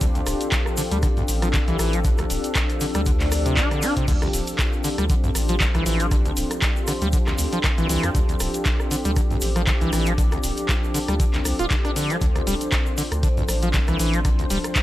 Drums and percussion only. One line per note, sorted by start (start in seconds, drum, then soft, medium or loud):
0.01 kick loud
0.01 closed hi-hat medium
0.01 shaker medium
0.15 closed hi-hat soft
0.15 shaker soft
0.27 cross-stick medium
0.27 closed hi-hat medium
0.27 open hi-hat loud
0.27 shaker medium
0.41 closed hi-hat medium
0.41 shaker soft
0.52 kick loud
0.52 snare loud
0.52 clap loud
0.52 closed hi-hat medium
0.52 shaker soft
0.66 cross-stick medium
0.66 shaker soft
0.77 closed hi-hat medium
0.77 open hi-hat loud
0.77 shaker medium
0.91 closed hi-hat medium
0.91 shaker soft
1.03 kick loud
1.03 cross-stick medium
1.03 closed hi-hat medium
1.03 shaker soft
1.17 closed hi-hat soft
1.17 shaker soft
1.28 closed hi-hat medium
1.28 open hi-hat loud
1.28 shaker medium
1.42 cross-stick medium
1.42 closed hi-hat medium
1.42 shaker soft
1.54 kick loud
1.54 snare loud
1.54 clap loud
1.54 closed hi-hat medium
1.54 shaker soft
1.68 closed hi-hat soft
1.68 shaker soft
1.79 cross-stick medium
1.79 open hi-hat medium
1.79 open hi-hat loud
1.79 shaker medium
1.93 closed hi-hat medium
1.93 shaker soft
2.04 kick loud
2.04 closed hi-hat medium
2.04 shaker medium
2.18 cross-stick medium
2.18 closed hi-hat soft
2.18 shaker soft
2.30 closed hi-hat medium
2.30 open hi-hat loud
2.30 shaker medium
2.44 closed hi-hat medium
2.44 shaker soft
2.55 kick loud
2.55 cross-stick medium
2.55 snare loud
2.55 clap loud
2.55 closed hi-hat medium
2.55 shaker medium
2.70 closed hi-hat soft
2.70 shaker soft
2.81 closed hi-hat medium
2.81 open hi-hat loud
2.81 shaker medium
2.94 cross-stick medium
2.94 closed hi-hat medium
2.94 shaker soft
3.06 kick loud
3.06 closed hi-hat medium
3.06 shaker soft
3.20 snare soft
3.20 clap soft
3.20 open hi-hat medium
3.20 shaker soft
3.31 cross-stick medium
3.31 closed hi-hat medium
3.31 open hi-hat loud
3.31 shaker loud
3.46 closed hi-hat medium
3.46 shaker soft
3.57 kick loud
3.57 snare loud
3.57 clap loud
3.57 closed hi-hat medium
3.57 shaker medium
3.71 cross-stick medium
3.71 closed hi-hat soft
3.71 shaker soft
3.82 closed hi-hat medium
3.82 open hi-hat loud
3.82 shaker medium
3.96 kick medium
3.96 closed hi-hat medium
3.96 shaker soft
4.08 kick loud
4.08 closed hi-hat medium
4.08 crash medium
4.08 shaker medium
4.22 cross-stick medium
4.22 closed hi-hat soft
4.22 shaker soft
4.33 closed hi-hat medium
4.33 open hi-hat loud
4.33 shaker loud
4.47 closed hi-hat medium
4.47 shaker soft
4.59 kick loud
4.59 cross-stick medium
4.59 snare loud
4.59 clap loud
4.59 closed hi-hat medium
4.59 shaker medium
4.73 shaker soft
4.84 closed hi-hat medium
4.84 open hi-hat loud
4.84 shaker loud
4.98 cross-stick medium
4.98 closed hi-hat medium
4.98 shaker soft
5.09 kick loud
5.09 closed hi-hat medium
5.09 shaker soft
5.24 closed hi-hat soft
5.24 shaker soft
5.35 cross-stick medium
5.35 closed hi-hat medium
5.35 open hi-hat loud
5.35 shaker loud
5.48 closed hi-hat medium
5.48 shaker soft
5.61 kick loud
5.61 snare loud
5.61 clap loud
5.61 closed hi-hat medium
5.61 shaker medium
5.75 cross-stick medium
5.75 closed hi-hat soft
5.75 shaker soft
5.86 open hi-hat medium
5.86 open hi-hat loud
5.86 shaker medium
6.00 closed hi-hat medium
6.00 shaker soft
6.11 kick loud
6.11 cross-stick medium
6.11 closed hi-hat medium
6.11 shaker medium
6.25 closed hi-hat soft
6.25 shaker soft
6.37 closed hi-hat medium
6.37 open hi-hat loud
6.37 shaker medium
6.51 cross-stick medium
6.51 closed hi-hat medium
6.51 shaker soft
6.62 kick loud
6.62 snare loud
6.62 clap loud
6.62 closed hi-hat medium
6.62 shaker medium
6.76 shaker soft
6.87 cross-stick medium
6.87 closed hi-hat medium
6.87 open hi-hat loud
6.87 shaker medium
7.01 closed hi-hat medium
7.01 shaker soft
7.13 kick loud
7.13 closed hi-hat medium
7.13 shaker medium
7.27 cross-stick medium
7.27 snare soft
7.27 clap soft
7.27 shaker soft
7.38 closed hi-hat medium
7.38 open hi-hat loud
7.38 shaker loud
7.52 closed hi-hat medium
7.52 shaker soft
7.64 kick loud
7.64 cross-stick medium
7.64 snare loud
7.64 clap loud
7.64 closed hi-hat medium
7.64 shaker medium
7.78 closed hi-hat soft
7.78 shaker soft
7.89 closed hi-hat medium
7.89 open hi-hat loud
7.89 shaker loud
8.03 cross-stick medium
8.03 closed hi-hat medium
8.03 shaker soft
8.15 kick loud
8.15 closed hi-hat medium
8.15 shaker medium
8.29 closed hi-hat soft
8.29 shaker soft
8.40 cross-stick medium
8.40 closed hi-hat medium
8.40 open hi-hat loud
8.40 shaker loud
8.54 closed hi-hat medium
8.54 shaker soft
8.65 kick loud
8.65 snare loud
8.65 clap loud
8.65 closed hi-hat medium
8.65 shaker medium
8.80 cross-stick medium
8.80 shaker soft
8.91 closed hi-hat medium
8.91 open hi-hat loud
8.91 shaker loud
9.05 closed hi-hat medium
9.05 shaker soft
9.16 kick loud
9.16 cross-stick medium
9.16 closed hi-hat medium
9.16 shaker medium
9.30 closed hi-hat soft
9.30 shaker soft
9.41 closed hi-hat medium
9.41 open hi-hat loud
9.41 shaker loud
9.56 cross-stick medium
9.56 closed hi-hat medium
9.56 shaker soft
9.67 kick loud
9.67 snare loud
9.67 clap loud
9.67 closed hi-hat medium
9.67 shaker medium
9.81 closed hi-hat soft
9.81 shaker soft
9.93 cross-stick medium
9.93 open hi-hat medium
9.93 open hi-hat loud
9.93 shaker medium
10.06 closed hi-hat medium
10.06 shaker soft
10.18 kick loud
10.18 closed hi-hat medium
10.18 shaker medium
10.32 cross-stick medium
10.32 closed hi-hat soft
10.32 shaker soft
10.43 closed hi-hat medium
10.43 open hi-hat loud
10.43 shaker medium
10.57 closed hi-hat medium
10.57 shaker soft
10.69 kick loud
10.69 cross-stick medium
10.69 snare loud
10.69 clap loud
10.69 closed hi-hat medium
10.69 shaker medium
10.84 shaker soft
10.94 closed hi-hat medium
10.94 open hi-hat loud
10.94 shaker loud
11.08 cross-stick medium
11.08 closed hi-hat medium
11.08 shaker soft
11.20 kick loud
11.20 closed hi-hat medium
11.20 shaker medium
11.34 snare soft
11.34 clap soft
11.34 closed hi-hat soft
11.34 shaker soft
11.45 cross-stick medium
11.45 closed hi-hat medium
11.45 open hi-hat loud
11.45 shaker loud
11.59 closed hi-hat medium
11.59 shaker soft
11.71 kick loud
11.71 snare loud
11.71 clap loud
11.71 closed hi-hat medium
11.71 shaker medium
11.85 cross-stick medium
11.85 closed hi-hat soft
11.85 shaker soft
11.96 closed hi-hat medium
11.96 open hi-hat loud
11.96 shaker loud
12.10 closed hi-hat medium
12.10 shaker soft
12.21 kick loud
12.21 closed hi-hat medium
12.21 shaker medium
12.36 cross-stick medium
12.36 closed hi-hat soft
12.36 shaker soft
12.47 closed hi-hat medium
12.47 open hi-hat loud
12.47 shaker medium
12.61 closed hi-hat medium
12.61 shaker soft
12.72 kick loud
12.72 cross-stick medium
12.72 snare loud
12.72 clap loud
12.72 closed hi-hat medium
12.72 shaker soft
12.86 shaker soft
12.98 closed hi-hat medium
12.98 open hi-hat loud
12.98 shaker loud
13.12 cross-stick medium
13.12 closed hi-hat medium
13.12 shaker soft
13.23 kick loud
13.23 closed hi-hat medium
13.23 shaker medium
13.37 closed hi-hat soft
13.37 shaker soft
13.48 cross-stick medium
13.48 closed hi-hat medium
13.48 open hi-hat loud
13.48 shaker medium
13.62 closed hi-hat medium
13.62 shaker soft
13.74 kick loud
13.74 snare loud
13.74 clap loud
13.74 closed hi-hat medium
13.74 shaker medium
13.88 cross-stick medium
13.88 closed hi-hat soft
13.88 shaker soft
13.99 open hi-hat loud
13.99 open hi-hat medium
13.99 shaker medium
14.13 closed hi-hat soft
14.13 shaker soft
14.25 kick loud
14.25 cross-stick medium
14.25 closed hi-hat medium
14.25 shaker soft
14.39 closed hi-hat soft
14.39 shaker soft
14.50 closed hi-hat medium
14.50 open hi-hat loud
14.50 shaker medium
14.64 cross-stick medium
14.64 closed hi-hat medium
14.64 shaker soft
14.76 kick loud
14.76 snare loud
14.76 clap loud
14.76 closed hi-hat medium
14.76 shaker soft